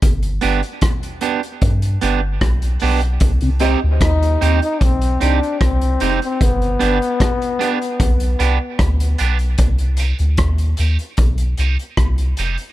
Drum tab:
HH |xxxxxxxxxxx-xxox|xxx-xxxxxxxxxxxx|xxxxxxxxxxx-xxxx|xxxxxxxxxxxxxxxx|
SD |----r-------r---|----r-------r---|----r-------r---|----r-------r---|
BD |o---o---o---o---|o---o---o---o---|o---o---o---o---|o---o---o---o---|